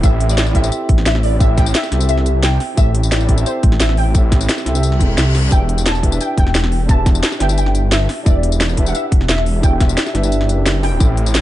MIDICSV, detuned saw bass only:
0, 0, Header, 1, 2, 480
1, 0, Start_track
1, 0, Key_signature, 1, "minor"
1, 0, Tempo, 342857
1, 48, Time_signature, 4, 2, 24, 8
1, 15974, End_track
2, 0, Start_track
2, 0, Title_t, "Detuned saw bass"
2, 0, Program_c, 0, 39
2, 47, Note_on_c, 0, 33, 98
2, 988, Note_off_c, 0, 33, 0
2, 1247, Note_on_c, 0, 33, 88
2, 1464, Note_off_c, 0, 33, 0
2, 1485, Note_on_c, 0, 33, 102
2, 2428, Note_off_c, 0, 33, 0
2, 2687, Note_on_c, 0, 36, 84
2, 3628, Note_off_c, 0, 36, 0
2, 3885, Note_on_c, 0, 33, 96
2, 4828, Note_off_c, 0, 33, 0
2, 5086, Note_on_c, 0, 33, 87
2, 5303, Note_off_c, 0, 33, 0
2, 5328, Note_on_c, 0, 33, 107
2, 6269, Note_off_c, 0, 33, 0
2, 6527, Note_on_c, 0, 36, 85
2, 7005, Note_on_c, 0, 28, 97
2, 7026, Note_off_c, 0, 36, 0
2, 7223, Note_off_c, 0, 28, 0
2, 7248, Note_on_c, 0, 36, 83
2, 7709, Note_off_c, 0, 36, 0
2, 7725, Note_on_c, 0, 28, 99
2, 8668, Note_off_c, 0, 28, 0
2, 8927, Note_on_c, 0, 28, 87
2, 9144, Note_off_c, 0, 28, 0
2, 9166, Note_on_c, 0, 28, 102
2, 10108, Note_off_c, 0, 28, 0
2, 10369, Note_on_c, 0, 31, 85
2, 11309, Note_off_c, 0, 31, 0
2, 11565, Note_on_c, 0, 28, 97
2, 12507, Note_off_c, 0, 28, 0
2, 12766, Note_on_c, 0, 28, 88
2, 12983, Note_off_c, 0, 28, 0
2, 13004, Note_on_c, 0, 28, 104
2, 13947, Note_off_c, 0, 28, 0
2, 14206, Note_on_c, 0, 31, 83
2, 14686, Note_on_c, 0, 30, 95
2, 14707, Note_off_c, 0, 31, 0
2, 15290, Note_on_c, 0, 26, 92
2, 15311, Note_off_c, 0, 30, 0
2, 15395, Note_off_c, 0, 26, 0
2, 15404, Note_on_c, 0, 33, 99
2, 15974, Note_off_c, 0, 33, 0
2, 15974, End_track
0, 0, End_of_file